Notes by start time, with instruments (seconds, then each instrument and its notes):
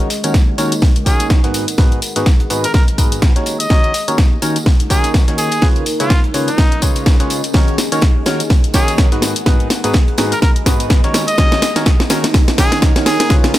Already playing: ambient pad C#4 D#4 G#4 D#5
0.00 ambient pad A#4, closed hi-hat
0.10 snare, closed hi-hat, open hi-hat, tambourine
0.24 fingered electric bass D#2, synth stab D#3 C#4 D#4 F#4 A#4 C#5, closed hi-hat, tambourine
0.34 kick, snare, closed hi-hat, tambourine
0.58 fingered electric bass D#2, synth stab D#3 C#4 D#4 F#4 A#4 C#5, closed hi-hat, open hi-hat, tambourine
0.62 ambient pad F#5
0.72 closed hi-hat, tambourine
0.82 kick, snare, open hi-hat, tambourine
0.96 fingered electric bass C#2, closed hi-hat
1.06 synth stab D#3 C#4 D#4 F#4 A#4 C#5, trumpet G#4, kick, closed hi-hat, open hi-hat, tambourine
1.20 fingered electric bass D#2, closed hi-hat, tambourine
1.30 kick, snare, closed hi-hat, tambourine
1.44 fingered electric bass G#1, synth stab G#2 B3 D#4 F#4 G#4 B4, snare, closed hi-hat
1.54 ambient pad G#4, closed hi-hat, open hi-hat, tambourine
1.68 ambient pad D#5, closed hi-hat, tambourine
1.78 fingered electric bass G#1, synth stab G#2 B3 D#4 F#4 G#4 B4, kick, snare, closed hi-hat, tambourine
1.92 closed hi-hat
2.02 closed hi-hat, open hi-hat, tambourine
2.16 fingered electric bass G#1, synth stab G#2 B3 D#4 F#4 G#4 B4, snare, closed hi-hat, tambourine
2.26 kick, snare, closed hi-hat, tambourine
2.40 closed hi-hat
2.50 fingered electric bass G#1, synth stab G#2 B3 D#4 F#4 G#4 B4, closed hi-hat, open hi-hat, tambourine
2.64 trumpet A#4, closed hi-hat, tambourine
2.74 trumpet A#4, kick, snare, closed hi-hat, tambourine
2.88 fingered electric bass F#1, closed hi-hat
2.98 synth stab G#2 B3 D#4 F#4 G#4 B4, kick, closed hi-hat, open hi-hat, tambourine
3.12 fingered electric bass G#1, closed hi-hat, tambourine
3.22 kick, snare, closed hi-hat, tambourine
3.36 fingered electric bass D#2, synth stab D#3 C#4 D#4 F#4 A#4 C#5, snare, closed hi-hat
3.46 ambient pad D#4, closed hi-hat, open hi-hat, tambourine
3.60 trumpet D#5, closed hi-hat, tambourine
3.70 fingered electric bass D#2, synth stab D#3 C#4 D#4 F#4 A#4 C#5, ambient pad A#4 F#5, kick, snare, closed hi-hat, tambourine
3.84 closed hi-hat
3.94 snare, closed hi-hat, open hi-hat, tambourine
4.08 fingered electric bass D#2, synth stab D#3 C#4 D#4 F#4 A#4 C#5, closed hi-hat, tambourine
4.18 kick, snare, closed hi-hat, tambourine
4.42 fingered electric bass D#2, synth stab D#3 C#4 D#4 F#4 A#4 C#5, closed hi-hat, open hi-hat, tambourine
4.56 closed hi-hat, tambourine
4.66 kick, snare, open hi-hat
4.80 fingered electric bass C#2, closed hi-hat
4.90 synth stab D#3 C#4 D#4 F#4 A#4 C#5, trumpet G#4, kick, closed hi-hat, open hi-hat, tambourine
5.04 fingered electric bass D#2, closed hi-hat, tambourine
5.14 kick, snare, closed hi-hat, tambourine
5.28 fingered electric bass D#2, synth stab D#3 C#4 D#4 F#4 A#4 C#5, snare, closed hi-hat
5.38 trumpet G#4, closed hi-hat, open hi-hat, tambourine
5.51 closed hi-hat, tambourine
5.62 synth stab C#3 C#4 F4 G#4 B4 C#5, ambient pad C#4, kick, snare, closed hi-hat, tambourine
5.76 closed hi-hat
5.86 closed hi-hat, open hi-hat, tambourine
6.00 fingered electric bass C#2, synth stab C#3 C#4 F4 G#4 B4 C#5, trumpet F4, snare, closed hi-hat, tambourine
6.10 ambient pad G#4, kick, snare, closed hi-hat, tambourine
6.24 closed hi-hat
6.34 fingered electric bass C#2, synth stab C#3 C#4 F4 G#4 B4 C#5, closed hi-hat, open hi-hat, tambourine
6.45 trumpet D#4, ambient pad D#5, closed hi-hat, tambourine
6.58 kick, snare, closed hi-hat, tambourine
6.72 fingered electric bass B1, closed hi-hat
6.82 synth stab C#3 C#4 F4 G#4 B4 C#5, kick, closed hi-hat, open hi-hat, tambourine
6.96 fingered electric bass C#2, closed hi-hat, tambourine
7.06 kick, snare, closed hi-hat, tambourine
7.20 fingered electric bass C#2, synth stab C#3 C#4 F4 G#4 B4 C#5, snare, closed hi-hat
7.30 closed hi-hat, open hi-hat, tambourine
7.44 closed hi-hat, tambourine
7.53 fingered electric bass D#2, synth stab D#3 C#4 D#4 F#4 A#4 C#5, ambient pad D#4, kick, snare, closed hi-hat, tambourine
7.68 closed hi-hat
7.78 snare, closed hi-hat, open hi-hat, tambourine
7.89 fingered electric bass D#2, synth stab D#3 C#4 D#4 F#4 A#4 C#5, ambient pad A#4, closed hi-hat, tambourine
8.01 kick, snare, closed hi-hat, tambourine
8.26 fingered electric bass D#2, synth stab D#3 C#4 D#4 F#4 A#4 C#5, snare, closed hi-hat, open hi-hat, tambourine
8.30 ambient pad F#5
8.40 closed hi-hat, tambourine
8.50 kick, snare, open hi-hat, tambourine
8.64 fingered electric bass C#2, closed hi-hat
8.74 synth stab D#3 C#4 D#4 F#4 A#4 C#5, trumpet G#4, kick, snare, closed hi-hat, open hi-hat, tambourine
8.88 fingered electric bass D#2, closed hi-hat, tambourine
8.98 kick, snare, closed hi-hat, tambourine
9.12 fingered electric bass G#1, synth stab G#2 B3 D#4 F#4 G#4 B4, snare, closed hi-hat
9.22 ambient pad G#4, snare, closed hi-hat, open hi-hat, tambourine
9.36 closed hi-hat, tambourine
9.46 synth stab G#2 B3 D#4 F#4 G#4 B4, kick, snare, closed hi-hat, tambourine
9.60 ambient pad B5, closed hi-hat
9.66 ambient pad D#5
9.70 snare, closed hi-hat, open hi-hat, tambourine
9.84 fingered electric bass G#1, synth stab G#2 B3 D#4 F#4 G#4 B4, snare, closed hi-hat, tambourine
9.93 kick, snare, closed hi-hat, tambourine
10.08 closed hi-hat
10.18 fingered electric bass G#1, synth stab G#2 B3 D#4 F#4 G#4 B4, snare, closed hi-hat, open hi-hat, tambourine
10.32 trumpet A#4, closed hi-hat, tambourine
10.42 trumpet A#4, kick, snare, closed hi-hat, tambourine
10.56 fingered electric bass F#1, closed hi-hat
10.66 synth stab G#2 B3 D#4 F#4 G#4 B4, kick, snare, closed hi-hat, open hi-hat, tambourine
10.80 fingered electric bass G#1, closed hi-hat, tambourine
10.90 kick, snare, closed hi-hat, tambourine
11.04 fingered electric bass D#2, synth stab D#3 C#4 D#4 F#4 A#4 C#5, snare, closed hi-hat
11.14 ambient pad D#4, snare, closed hi-hat, open hi-hat, tambourine
11.28 trumpet D#5, closed hi-hat, tambourine
11.38 fingered electric bass D#2, synth stab D#3 C#4 D#4 F#4 A#4 C#5, kick, snare, closed hi-hat, tambourine
11.50 ambient pad A#4, snare, closed hi-hat
11.62 snare, closed hi-hat, open hi-hat, tambourine
11.76 fingered electric bass D#2, synth stab D#3 C#4 D#4 F#4 A#4 C#5, snare, closed hi-hat, tambourine
11.83 ambient pad F#5, kick, snare, closed hi-hat, tambourine
12.00 snare
12.10 fingered electric bass D#2, synth stab D#3 C#4 D#4 F#4 A#4 C#5, snare, closed hi-hat, open hi-hat, tambourine
12.24 snare, closed hi-hat, tambourine
12.34 kick, snare, open hi-hat, tambourine
12.48 fingered electric bass C#2, snare, closed hi-hat
12.58 synth stab D#3 C#4 D#4 F#4 A#4 C#5, trumpet G#4, kick, snare, closed hi-hat, open hi-hat, tambourine
12.72 fingered electric bass D#2, snare, closed hi-hat, tambourine
12.82 kick, snare, closed hi-hat, tambourine
12.96 fingered electric bass D#2, synth stab D#3 C#4 D#4 F#4 A#4 C#5, snare, closed hi-hat
13.06 trumpet G#4, snare, closed hi-hat, open hi-hat, tambourine
13.20 snare, closed hi-hat, tambourine
13.30 synth stab C#3 C#4 F4 G#4 B4 C#5, kick, snare, closed hi-hat, tambourine
13.44 snare, closed hi-hat
13.54 snare, closed hi-hat, open hi-hat, tambourine